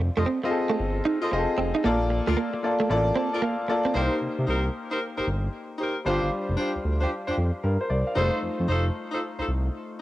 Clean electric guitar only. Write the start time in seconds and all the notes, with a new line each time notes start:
0.17 A3
0.26 C4
0.43 muted clean electric guitar stroke
0.69 A3
1.05 D#4
1.31 muted clean electric guitar stroke
1.58 C4
1.75 D#4
1.84 A#3
2.10 muted clean electric guitar stroke
2.27 A3
2.37 A#3
2.54 muted clean electric guitar stroke
2.80 A3
3.16 C4
3.42 A#3
3.68 muted clean electric guitar stroke
3.85 C4